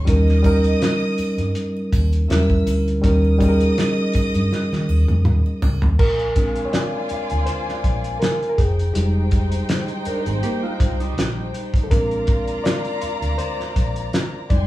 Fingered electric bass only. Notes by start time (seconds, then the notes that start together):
0.08 D#2
1.19 muted fingered electric bass stroke
1.38 G2
1.93 D#2
2.30 E2
2.67 D2
3.04 D#2
4.15 muted fingered electric bass stroke
4.35 G2
4.72 D#3
4.89 D#2
5.09 F2
5.26 D#2
5.63 C#2
5.83 D#2
6.00 A#1
7.11 muted fingered electric bass stroke
7.31 D2
7.84 A#1
8.58 F1
8.96 F1
10.06 muted fingered electric bass stroke
10.26 G#1
10.80 C2
11.17 A#1
11.74 A1
11.91 A#1
13.03 muted fingered electric bass stroke
13.22 D2
13.76 A#1
14.50 F1